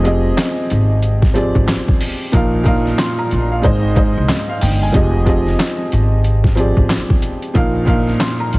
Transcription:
Already playing: F1 F3 C4 G4 G#4 D#5
0.03 F3 C4 G4 G#4 D#5, closed hi-hat
0.38 snare, clap, closed hi-hat
0.70 G#1, closed hi-hat
1.02 closed hi-hat
1.22 kick, snare
1.34 F3 C4 G4 G#4 D5, closed hi-hat
1.55 G#1, kick
1.68 snare, clap, closed hi-hat
1.88 kick
2.00 open hi-hat
2.32 A#1 A#2 F3 D#4 A#4 F5, kick, closed hi-hat
2.63 A#2 F3 D#4 A#4 F5, kick, closed hi-hat
2.86 snare
2.98 C6, snare, clap, closed hi-hat
3.18 A#5
3.31 A#1, closed hi-hat
3.51 F5
3.62 G#1 G#2 G#3 D#4 C5 D#5, kick, closed hi-hat
3.94 G#2 G#3 D#4 C5 D#5, kick, closed hi-hat
4.17 C2
4.29 snare, clap, closed hi-hat
4.49 F5
4.61 G1 G5, open hi-hat
4.83 G#5
4.92 F1 F3 C4 G4 G#4 D#5, kick, closed hi-hat
5.26 F3 C4 G4 G#4 D#5, kick, closed hi-hat
5.47 snare
5.60 snare, clap, closed hi-hat
5.92 G#1, closed hi-hat
6.24 closed hi-hat
6.44 kick, snare
6.55 F3 C4 G4 G#4 D5, closed hi-hat
6.77 G#1, kick
6.89 snare, clap, closed hi-hat
7.10 kick
7.22 closed hi-hat
7.42 closed hi-hat
7.54 A#1 A#2 F3 D#4 A#4 F5, kick, closed hi-hat
7.85 A#2 F3 D#4 A#4 F5, kick, closed hi-hat
8.07 snare
8.20 C6, snare, clap, closed hi-hat
8.40 A#5
8.53 A#1, closed hi-hat

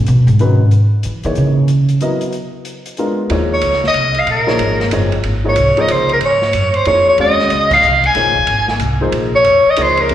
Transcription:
0.06 B2, closed hi-hat
0.27 G#2, closed hi-hat
0.39 D#3 G#3 C#4 F#4 B4, closed hi-hat
0.71 closed hi-hat
1.03 E3, closed hi-hat
1.23 D#3 E3 A#3 D#4 G#4 C#5, closed hi-hat
1.35 C#3, closed hi-hat
1.68 closed hi-hat
1.88 closed hi-hat
2.00 F#3 B3 E4 A#4 D#5, closed hi-hat
2.21 closed hi-hat
2.32 closed hi-hat
2.65 closed hi-hat
2.86 closed hi-hat
2.97 G#3 B3 D4 F4 A#4, closed hi-hat
3.30 D#2 F3 A#3 D#4 G#4 C#5, ride
3.54 C#5
3.61 C#2, hi-hat pedal, ride
3.73 snare
3.84 D#5, snare
3.94 C2, hi-hat pedal, ride
4.15 ride
4.19 F5
4.27 A#1, ride
4.31 A#4
4.47 F3 A#3 D#4 G#4 C#5, snare
4.59 G#1, ride
4.80 snare
4.91 F#1 F3 A#3 D#4 G#4 C#5, hi-hat pedal, ride
5.12 ride
5.24 G#1, ride
5.44 F3 A#3 D#4 G#4 C#5
5.49 C#5
5.56 C2, hi-hat pedal, ride
5.77 F3 A#3 D#4 G#4 C5, muted upright bass stroke, ride
5.81 D#5
5.88 C#2 C5, hi-hat pedal, ride
6.09 ride
6.13 A#4
6.21 G#2, ride
6.25 C#5
6.42 snare
6.53 F#2, hi-hat pedal, ride
6.74 C5, ride
6.85 F2 F3 A#3 D#4 G#4 C#5, ride
7.09 C#5
7.18 D#2 G#3 C#4 F#4 C5 D#5 F5, ride
7.39 snare
7.50 C#2, hi-hat pedal, ride
7.71 F5, kick, crash
7.83 C2, hi-hat pedal
8.03 G#5, kick, ride
8.15 A#1 F3 A#3 D#4 G#4 C#5, snare, ride
8.26 G#1
8.36 D#1, kick
8.47 G#1, ride
8.68 snare
8.79 C2, hi-hat pedal, ride
9.01 F3 A#3 D#4 G#4 C5
9.12 A#1, ride
9.35 C#5
9.44 F2, hi-hat pedal, ride
9.66 muted upright bass stroke
9.70 D#5
9.76 C#2 F3 A#3 D#4 G#4 C#5, hi-hat pedal, ride
9.81 C5
9.97 A#4, ride
10.09 D#2 F#3 B3 E4 A4 D5, ride

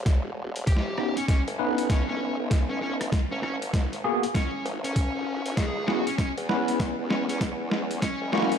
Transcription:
Already playing: E1
0.06 kick, snare, closed hi-hat
0.56 closed hi-hat
0.67 D#1 G4, kick, closed hi-hat
0.76 snare
0.98 B3 C#4 D#4 G4, cross-stick
1.17 C#4, closed hi-hat
1.28 C#4, kick, snare, closed hi-hat
1.48 G1, closed hi-hat
1.59 B3 C#4 D#4 B4
1.78 closed hi-hat
1.90 C#4, kick, snare, closed hi-hat
2.09 G1 C#4
2.39 G1
2.51 kick, snare, closed hi-hat
2.70 C#4
2.82 C#4
3.01 cross-stick, closed hi-hat
3.12 kick, snare, closed hi-hat
3.31 G#1 C#4
3.43 C#4, cross-stick
3.62 closed hi-hat
3.73 G#1, kick, snare, closed hi-hat
3.93 closed hi-hat
4.04 A#3 B3 F#4 G#4
4.23 closed hi-hat
4.35 C#4, kick, snare, closed hi-hat
4.65 G#1, closed hi-hat
4.84 C#4, closed hi-hat
4.96 kick, closed hi-hat
5.15 G#1
5.45 G#1, closed hi-hat
5.57 C#2 G#4, kick, snare, closed hi-hat
5.87 B3 C#4 E4 F#4 G#4, snare
6.07 C#4, closed hi-hat
6.18 C#4, kick, snare, closed hi-hat
6.37 E2, closed hi-hat
6.49 B3 C#4 E4 B4, snare
6.68 closed hi-hat
6.79 kick, snare, closed hi-hat
6.99 E2
7.10 C#4, snare
7.29 E2 C#4, closed hi-hat
7.41 kick, snare, closed hi-hat
7.71 snare
7.91 closed hi-hat
8.02 C#4, kick, snare, closed hi-hat
8.22 F#1
8.32 A#3 C#4 E4 F#4, snare
8.38 snare
8.42 snare
8.47 snare
8.52 snare, closed hi-hat
8.55 snare

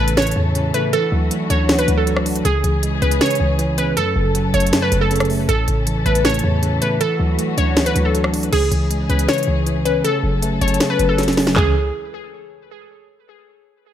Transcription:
Already playing: A2 C#3 E3 C#4 A4
0.00 A1 A3 B4
0.08 closed hi-hat
0.17 A2 C#5, snare, closed hi-hat
0.22 closed hi-hat
0.27 closed hi-hat
0.31 closed hi-hat
0.36 E2 C#3
0.55 C#3, closed hi-hat
0.74 A3 B4, closed hi-hat
0.93 E3 D4 F#4 A4, closed hi-hat
1.12 D2 F#3
1.31 A3, closed hi-hat
1.50 D2 D4 C#5, closed hi-hat
1.69 E3, snare, closed hi-hat
1.79 B4, closed hi-hat
1.88 D2 F#3, closed hi-hat
1.97 A4
2.07 F#3, closed hi-hat
2.17 cross-stick
2.25 D4, closed hi-hat, open hi-hat
2.35 closed hi-hat
2.45 C#2 C#3 E3 C#4 G#4, closed hi-hat
2.64 C#2 E3, closed hi-hat
2.83 G#3, closed hi-hat
3.02 C#2 C#4 B4, closed hi-hat
3.11 closed hi-hat
3.21 C#3 C#5, snare, closed hi-hat
3.26 closed hi-hat
3.30 closed hi-hat
3.35 closed hi-hat
3.40 C#2 E3
3.59 E3, closed hi-hat
3.78 C#4 B4, closed hi-hat
3.96 F#2 F#3 C#4 A4, closed hi-hat
4.16 F#1 C#3
4.35 F#3, closed hi-hat
4.54 F#1 A3 C#5, closed hi-hat
4.60 closed hi-hat
4.67 closed hi-hat
4.73 F#2, snare, closed hi-hat
4.82 B4
4.92 F#1 C#3, closed hi-hat
5.01 A4
5.11 C#3, closed hi-hat
5.16 closed hi-hat
5.20 cross-stick, closed hi-hat
5.25 closed hi-hat
5.30 A3, open hi-hat
5.49 A1 A2 E3 A4, closed hi-hat
5.68 A1 C#3, closed hi-hat
5.87 E3, closed hi-hat
6.06 A1 A3 B4, closed hi-hat
6.15 closed hi-hat
6.25 A2 C#5, snare, closed hi-hat
6.29 closed hi-hat
6.34 closed hi-hat
6.39 closed hi-hat
6.44 E2 C#3
6.63 C#3, closed hi-hat
6.82 A3 B4, closed hi-hat
7.00 E3 D4 F#4 A4, closed hi-hat
7.20 D2 F#3
7.38 A3, closed hi-hat
7.57 D2 D4 C#5, closed hi-hat
7.77 E3, snare, closed hi-hat
7.86 B4, closed hi-hat
7.96 D2 F#3, closed hi-hat
8.05 A4
8.15 F#3, closed hi-hat
8.24 cross-stick
8.33 D4, closed hi-hat, open hi-hat
8.43 closed hi-hat
8.53 C#2 C#3 E3 C#4 G#4, closed hi-hat, crash
8.72 C#2 E3, closed hi-hat
8.90 G#3, closed hi-hat
9.09 C#2 C#4 B4, closed hi-hat
9.19 closed hi-hat
9.28 C#3 C#5, snare, closed hi-hat
9.33 closed hi-hat
9.38 closed hi-hat
9.43 closed hi-hat
9.48 C#2 E3
9.66 E3, closed hi-hat
9.85 C#4 B4, closed hi-hat
10.04 C#3 F#3 A4, closed hi-hat
10.23 F#1 F#3
10.42 A3, closed hi-hat
10.61 F#1 C#4 C#5, closed hi-hat
10.68 closed hi-hat
10.74 closed hi-hat
10.80 C#3, snare, closed hi-hat
10.90 B4
10.99 F#1 F#3, closed hi-hat
11.09 A4
11.18 F#3, snare, closed hi-hat
11.23 closed hi-hat
11.28 snare, closed hi-hat
11.33 closed hi-hat
11.37 C#4, snare, open hi-hat
11.47 snare
11.56 C#2 C#3 E3 G#3 C#4 G#4, kick, clap, floor tom

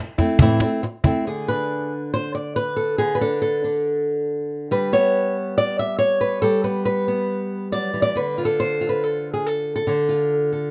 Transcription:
0.18 A3 C4 E4, cajon bass, cajon slap
0.39 A2 E3 A3 C4 E4, cajon bass
0.60 A3 C4 E4, cajon slap
0.83 muted nylon-string guitar stroke
1.04 A3 C4 E4, cajon bass
1.27 D3 G#4
1.48 D4 B4
2.14 C5
2.35 D5
2.56 B4
2.76 A4
2.98 D3 G#4
3.15 B4
3.21 D4 A4
3.42 A4
3.64 D4
4.71 G3 B4
4.93 B3 C#5
5.58 D5
5.79 E5
5.99 C#5
6.21 B4
6.42 G3 A4
6.64 B3 B4
6.85 B4
7.08 B3
7.72 F#3 D5
7.94 E3
8.02 D5
8.15 D3 B4
8.38 F4
8.45 A4
8.60 C5
8.81 F4
8.89 B4
9.04 A4
9.34 G#4
9.46 A4
9.76 A4
9.87 D3 C5
10.09 F4
10.52 A4

